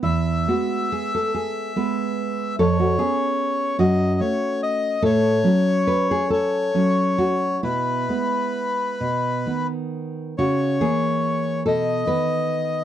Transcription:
<<
  \new Staff \with { instrumentName = "Bandoneon" } { \time 6/8 \key e \major \tempo 4. = 46 e''2. | cis''4. dis''8 cis''8 dis''8 | cis''4. cis''4. | b'2~ b'16 r8. |
cis''4. dis''4. | }
  \new Staff \with { instrumentName = "Nylon-string guitar" } { \time 6/8 \key e \major << { e'8 fis'8 gis'16 a'16 gis'8 b'4 | a'16 fis'16 gis'4 fis'4. | a'4 b'16 gis'16 a'4 fis'8 | e'4. r4. |
fis'8 gis'4 a'8 b'4 | } \\ { e,8 <gis b>4. <gis b>4 | eis,8 <b cis'>4 fis,8 <a cis'>4 | a,8 <fis cis'>4. <fis cis'>4 | b,8 <gis b>4 b,8 <dis b>4 |
cis8 <e ais>4 b,8 <dis b>4 | } >> }
>>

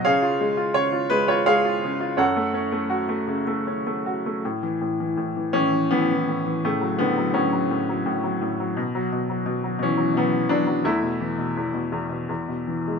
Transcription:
<<
  \new Staff \with { instrumentName = "Upright piano" } { \time 3/4 \key fis \minor \tempo 4 = 84 eis''4 cis''8 b'16 cis''16 eis''4 | fis''2~ fis''8 r8 | \key a \major r4. cis'8 b4 | a8 b8 cis'4. r8 |
r4. cis'8 b8 d'8 | e'2~ e'8 r8 | }
  \new Staff \with { instrumentName = "Upright piano" } { \clef bass \time 3/4 \key fis \minor << { <gis' cis''>4. r8 <gis' cis''>4 | <a' cis''>2~ <a' cis''>8 r8 | \key a \major r4. e8 e4 | cis8 d8 fis4. r8 |
r4. e8 fis8 fis8 | a2~ a8 r8 | } \\ { cis16 eis'16 gis16 eis'16 cis16 eis'16 gis16 eis'16 gis16 eis'16 cis16 eis'16 | fis,16 a16 cis'16 a16 fis'16 a16 cis16 a16 cis'16 a16 fis'16 a16 | a,16 e16 a,16 e16 a,16 e16 a,16 e16 a,16 e16 a,16 e16 | a,16 fis16 a,16 fis16 a,16 fis16 a,16 fis16 a,16 fis16 a,16 fis16 |
b,16 fis16 b,16 fis16 b,16 fis16 b,16 fis16 b,16 fis16 b,16 fis16 | e,16 b,16 e16 b,16 e,16 b,16 e,16 b,16 e,16 b,16 e16 gis16 | } >> }
>>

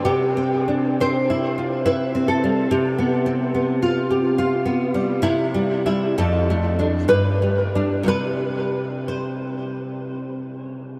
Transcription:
\new Staff \with { instrumentName = "Nylon-string guitar" } { \time 3/4 \key c \major \tempo 4 = 65 << { g'4 c''4 b'8 a'8 | g'2~ g'8 r8 | e'4 a'4 b'4 | b'4 c''4. r8 | } \\ { \tuplet 3/2 { c8 c'8 d'8 c'8 e'8 f'8 e'8 c'8 g8 } | \tuplet 3/2 { c8 b8 c'8 b8 f'8 g'8 f'8 b8 g8 } | \tuplet 3/2 { c8 g8 <g e'>8 f,8 a8 <a d'>8 g,8 g8 <g d'>8 } | <c g e'>2. | } >> }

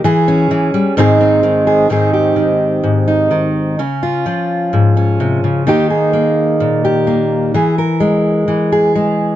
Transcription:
\new Staff \with { instrumentName = "Steel-string acoustic guitar" } { \time 4/4 \key aes \major \tempo 4 = 128 << { aes'8 des'4. <ees c' ees' aes'>8 c'4 aes'8 | <ees c' ees' aes'>8 g'2 ees'4. | des'8 f'2 des'4. | <bes ees' g'>8 aes'2 g'4. |
gis'8 bes'2 gis'4. | } \\ { fes4 fes8 g8 aes,4 ees4 | aes,4 ees4 aes,4 ees4 | des4 f4 aes,4 c8 des8 | ees4 bes4 bes,4 bes4 |
e4 gis4 e4 gis4 | } >> }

